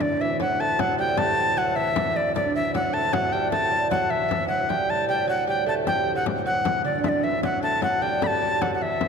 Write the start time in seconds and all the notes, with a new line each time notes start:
0.00 D2 A2 D3 D5, frame drum
0.20 E3 E5, frame drum
0.40 F#3 F#5, frame drum
0.60 A3 A5
0.79 F#3 F#5, frame drum
0.99 G3 G5, frame drum
1.17 A3 A5, frame drum
1.38 frame drum
1.57 F#3 F#5
1.76 E3 E5
1.96 E3, frame drum
2.16 D5, frame drum
2.35 D3 D5, frame drum
2.55 E3 E5, frame drum
2.74 F#3 F#5, frame drum
2.93 A3 A5
3.13 F#3 F#5, frame drum
3.32 G3 G5, frame drum
3.51 A3 A5, frame drum
3.71 G3, frame drum
3.91 F#3 F#5, frame drum
4.10 E3 E5, frame drum
4.29 E3, frame drum
4.48 F#3 F#5
4.69 D2 A2 G3 G5, frame drum
4.90 A5, frame drum
5.09 G3 G5
5.27 F#3 F#5
5.47 G3 G5
5.66 A3 A5, frame drum
5.87 G3 G5, frame drum
6.07 frame drum
6.15 F#3 F#5
6.26 frame drum
6.46 F#3 F#5
6.65 E3, frame drum
6.85 D3 D5, frame drum
7.03 D3 E5, frame drum
7.09 D5
7.24 E3 E5, frame drum
7.43 F#3 F#5, frame drum
7.63 A3 A5
7.81 F#3 F#5, frame drum
8.02 G3 G5, frame drum
8.22 A3 B5, frame drum
8.27 A5
8.41 G3, frame drum
8.61 F#3 F#5, frame drum
8.74 F#5
8.81 E3 E5
9.01 E3, frame drum